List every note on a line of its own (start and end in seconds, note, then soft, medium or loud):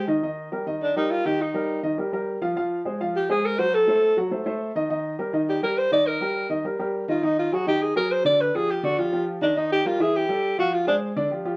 0.08 0.20 D#3 medium
0.08 0.20 D#4 medium
0.08 0.20 D#5 medium
0.23 0.47 D#3 medium
0.23 0.47 D#4 medium
0.23 0.47 D#5 medium
0.52 0.64 G3 medium
0.52 0.64 G4 medium
0.52 0.64 A#4 medium
0.66 0.90 D#3 medium
0.66 0.91 D#4 medium
0.66 0.91 D#5 medium
0.82 0.95 D4 medium
0.96 1.20 G3 medium
0.96 1.13 D#4 medium
0.96 1.20 G4 medium
0.96 1.20 A#4 medium
1.11 1.27 F4 medium
1.25 1.49 D#3 medium
1.25 1.49 D#4 medium
1.25 1.43 G4 medium
1.25 1.49 D#5 medium
1.42 1.84 D#4 medium
1.54 1.78 G3 medium
1.54 1.78 G4 medium
1.54 1.78 A#4 medium
1.83 1.95 D#3 medium
1.83 1.95 D#4 medium
1.83 1.95 D#5 medium
1.98 2.10 G3 medium
1.98 2.10 G4 medium
1.98 2.10 A#4 medium
2.13 2.36 G3 medium
2.13 2.37 G4 medium
2.13 2.37 A#4 medium
2.41 2.54 F3 medium
2.41 2.54 F4 medium
2.41 2.54 F5 medium
2.56 2.80 F3 medium
2.56 2.80 F4 medium
2.56 2.81 F5 medium
2.85 2.97 G#3 medium
2.85 2.97 G#4 medium
2.85 2.98 C5 medium
3.00 3.24 F3 medium
3.00 3.24 F4 medium
3.00 3.24 F5 medium
3.16 3.29 G4 medium
3.29 3.53 G#3 medium
3.29 3.53 G#4 medium
3.29 3.47 G#4 loud
3.29 3.53 C5 medium
3.46 3.60 A#4 medium
3.59 3.82 F#3 medium
3.59 3.83 F#4 medium
3.59 3.76 C5 loud
3.59 3.83 F#5 medium
3.75 4.18 A4 medium
3.88 4.11 A3 medium
3.88 4.12 A4 medium
3.88 4.12 C5 medium
4.17 4.29 F#3 medium
4.17 4.29 F#4 medium
4.17 4.29 F#5 medium
4.31 4.43 A3 medium
4.31 4.43 A4 medium
4.31 4.44 C5 medium
4.46 4.70 A3 medium
4.46 4.70 A4 medium
4.46 4.70 C5 medium
4.75 4.87 D#3 medium
4.75 4.87 D#4 medium
4.75 4.88 D#5 medium
4.90 5.14 D#3 medium
4.90 5.14 D#4 medium
4.90 5.14 D#5 medium
5.19 5.31 G3 medium
5.19 5.31 G4 medium
5.19 5.31 A#4 medium
5.33 5.57 D#3 medium
5.33 5.57 D#4 medium
5.33 5.58 D#5 medium
5.49 5.62 G4 medium
5.63 5.86 G3 medium
5.63 5.87 G4 medium
5.63 5.87 A#4 medium
5.63 5.80 A#4 medium
5.78 5.92 C5 medium
5.91 6.15 D#3 medium
5.91 6.16 D#4 medium
5.91 6.09 D5 loud
5.91 6.16 D#5 medium
6.07 6.50 A#4 loud
6.21 6.45 G3 medium
6.21 6.45 G4 medium
6.21 6.45 A#4 medium
6.49 6.62 D#3 medium
6.49 6.62 D#4 medium
6.49 6.62 D#5 medium
6.64 6.76 G3 medium
6.64 6.77 G4 medium
6.64 6.77 A#4 medium
6.79 7.03 G3 medium
6.79 7.03 G4 medium
6.79 7.04 A#4 medium
7.08 7.20 D#3 medium
7.08 7.20 D#4 medium
7.08 7.26 F4 medium
7.08 7.21 D#5 medium
7.22 7.47 D#3 medium
7.22 7.47 D#4 medium
7.22 7.38 D#4 medium
7.22 7.47 D#5 medium
7.39 7.55 F4 medium
7.52 7.64 F#3 medium
7.52 7.64 F#4 medium
7.52 7.67 F#4 medium
7.52 7.65 G#4 medium
7.67 7.91 D#3 medium
7.67 7.91 D#4 medium
7.67 7.84 G4 loud
7.67 7.91 D#5 medium
7.82 7.96 G#4 medium
7.96 8.20 F#3 medium
7.96 8.20 F#4 medium
7.96 8.20 G#4 medium
7.96 8.13 A#4 loud
8.12 8.25 C5 medium
8.25 8.49 D3 medium
8.25 8.49 D4 medium
8.25 8.49 D5 medium
8.25 8.43 D5 loud
8.41 8.57 B4 medium
8.54 8.78 F3 medium
8.54 8.78 F4 medium
8.54 8.78 G4 medium
8.54 8.72 G#4 loud
8.71 8.86 G4 medium
8.83 8.95 D3 medium
8.83 8.95 D4 medium
8.83 9.00 F#4 medium
8.83 8.95 D5 medium
8.98 9.10 F3 medium
8.98 9.10 F4 medium
8.98 9.27 F4 medium
8.98 9.10 G4 medium
9.13 9.36 F3 medium
9.13 9.36 F4 medium
9.13 9.37 G4 medium
9.41 9.53 D#3 medium
9.41 9.59 D4 medium
9.41 9.54 D#4 medium
9.41 9.54 D#5 medium
9.56 9.80 D#3 medium
9.56 9.80 D#4 medium
9.56 9.71 D#4 medium
9.56 9.80 D#5 medium
9.72 9.88 G4 loud
9.85 9.97 G3 medium
9.85 10.03 F4 loud
9.85 9.97 G4 medium
9.85 9.97 A#4 medium
10.00 10.24 E3 medium
10.00 10.24 E4 medium
10.00 10.18 G#4 loud
10.00 10.24 E5 medium
10.16 10.59 G4 medium
10.29 10.53 G3 medium
10.29 10.53 G4 medium
10.29 10.53 A4 medium
10.58 10.82 F3 medium
10.58 10.82 F4 medium
10.58 10.75 F#4 loud
10.58 10.82 F5 medium
10.74 10.87 F4 medium
10.87 11.11 G#3 medium
10.87 10.96 D4 loud
10.87 11.11 G#4 medium
10.87 11.11 C5 medium
11.16 11.28 D3 medium
11.16 11.28 D4 medium
11.16 11.28 D5 medium
11.31 11.43 F3 medium
11.31 11.43 F4 medium
11.31 11.43 G4 medium
11.45 11.57 F3 medium
11.45 11.57 F4 medium
11.45 11.57 G4 medium